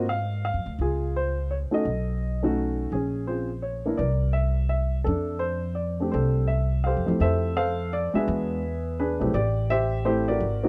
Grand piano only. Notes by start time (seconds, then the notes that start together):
Already playing: C5
0.09 F5
0.45 F5
0.81 F4 G#4
1.16 C5
1.51 C#5
1.71 A3 C#4 D#4 F#4 A4 D#5
2.43 A3 C#4 D#4 F#4
2.93 C#4 G#4
3.27 C4 C#4 F4 G#4 C5
3.62 C#5
3.86 A#3 D4 E4 A#4
3.97 A#4 D5
4.33 E5
4.69 E5
5.04 D4 A4
5.39 C5
5.75 D5
6.00 A3 C4 D4 G4
6.12 A4 C5
6.47 E5
6.84 G4 A4 C5 F5
7.06 F2 A3 C4 E4 G4
7.21 A4 C5 E5
7.57 A4 C5 F5
7.93 D5
8.14 G#3 B3 D4 F#4 G#4 B4 E5
8.99 D4 G#4 B4
9.20 A3 C4 E4 G4
9.34 G4 D5
9.70 G4 C5 E5
10.05 A3 C4 E4 G4 C5
10.28 F#4 A#4 D5
10.63 A#3 C4 D#4 F#4